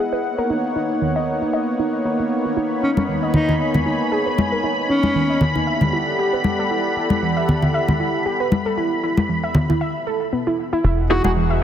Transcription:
Already playing: B3 E4 G#4 D#5 F#5
0.13 B4
0.24 A#3 B3 D#4 C#5
0.38 A#4
0.50 D#4
0.76 D#4
1.02 D#3
1.16 D#5
1.42 D#4
1.53 D#5
1.79 D#4
2.05 D#4
2.19 D#4
2.45 D#4
2.57 D#4 B5
2.83 C#4 D#4
2.97 C#4, high conga
3.09 D#3
3.23 D#5
3.34 D#4 G#5, low conga
3.49 D#4, low conga
3.60 D#5
3.74 high conga, low conga
3.86 D#4
4.12 G#4
4.26 B4
4.38 high conga
4.52 A#4
4.64 D#4
4.90 C#4 D#4
5.03 high conga
5.15 D#3
5.30 D#5
5.41 low conga
5.55 D#4, low conga
5.67 G4 A4 D5 E5 F#5
5.81 high conga, low conga
5.93 E4
6.19 G4
6.33 B4
6.44 high conga
6.59 A4
6.71 E4
6.96 E4
7.10 high conga
7.22 E3
7.37 E5
7.49 low conga
7.62 E4, low conga
7.74 E5
7.88 high conga, low conga
8.00 E4
8.26 G4
8.40 B4
8.52 high conga
8.66 A4
8.77 E4
9.03 E4
9.17 high conga
9.29 E3
9.44 E5
9.55 low conga
9.69 E4, low conga
9.81 E5
10.07 A4
10.33 B3
10.47 E4
10.73 E4
10.84 E1 E3 E4 G#4 D#5 F#5
11.10 B3 D#4 E4 F#4 G#4
11.24 E1 B3 D#4 E4 F#4 G#4, high conga
11.36 E3
11.50 E5

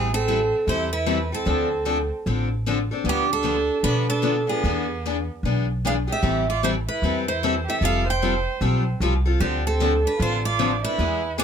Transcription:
Already playing: A1 C4 G#4
0.12 C4 A4
0.28 E3 G3 C4 E4 A4
0.67 E2 E3 G3 C4 E4 A4 C5
0.92 E4 B4
1.06 E3 G3 C4 E4 A4
1.32 C4 E4 A4
1.45 D2 D3 F3 C4 D4 A4
1.85 D3 F3 C4 D4 A4
2.26 A1 D3 F3 C4 D4 A4
2.66 D3 F3 C4 D4 A4
2.91 C4 D4 A4
3.04 D2 D3 F3 B3 D4
3.09 G4
3.31 D4 A4
3.43 D3 F3 B3 D4
3.83 B2 D3 F3 B3 D4 B4
4.09 D4 A4
4.22 D3 F3 B3 D4
4.47 F3 B3 D4 G#4
4.64 E2 E3 B3 D4 G#4
5.06 E3 B3 D4 G#4
5.43 B1 E3 B3 D4 G#4
5.85 E3 B3 D4 G#4 F5
6.07 B3 D4 G4 G#4
6.12 E5
6.22 A1 E3 G3 C4 E4 A4
6.50 F4 D5
6.63 E3 G3 C4 E4 A4 C5
6.88 E4 B4
7.02 E2 E3 G3 C4 E4 A4
7.28 E4 C5
7.43 E3 G3 C4 E4 A4
7.66 C4 E4 G4 A4 E5
7.81 F1 F3 G3 C4 F4 A4 F5
8.07 C5 G5
8.22 F3 G3 C4 F4 A4
8.61 B1 F3 G3 C4 F4 A4
9.00 C2 F3 G3 C4 F4 A4
9.26 C4 F4 A4
9.40 D2 D3 F3 C4 D4 G4 A4
9.66 C4 A4
9.80 D3 F3 C4 D4 A4
10.05 D4 B4
10.19 A1 D3 F3 C4 D4 F4 A4 C5
10.45 F4 D5
10.59 D3 F3 C4 D4 A4
10.83 C4 D4 E4 A4 B4
10.98 E2 E3 G#3 B3 E4 G#4
11.38 E3 G#3 B3 E4 G#4 D5

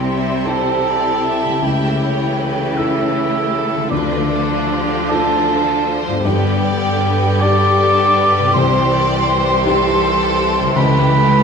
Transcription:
Already playing: C2 C3 G3 C4 E4 G4 C5
0.05 E5
0.45 E4 A4 C5 A5
0.87 D5
1.25 E5
1.45 C#3
1.49 A3
1.53 E4
1.58 C#2 G4 A4
1.63 C#3 E3 A3 E5 G5
2.02 C#5
2.42 B4
2.77 E4 A4 E5
3.17 G4
3.55 A4
3.73 D3
3.77 A3
3.82 F4
3.86 A4
3.91 D2 D3 F3 D4 F4 B4 D5
4.31 A4
4.70 G4
5.10 F4 A4 A5
5.50 A4
5.88 C5
6.07 G2
6.11 B3
6.16 D4
6.21 D3 G3 B3 G4 B4 G5
6.25 G2 G4
6.62 D5
7.01 B4
7.40 D4 G4 D5 D6
7.79 A4
8.17 B4
8.38 C3
8.43 C4
8.47 E4 G4
8.54 C2 E3 C4 C5 C6
8.92 D5
9.29 C5
9.64 E4 G4 A4
10.60 C#3
10.64 A3
10.68 E4
10.72 C#2 A3 G4 B5
10.78 C#2 B4

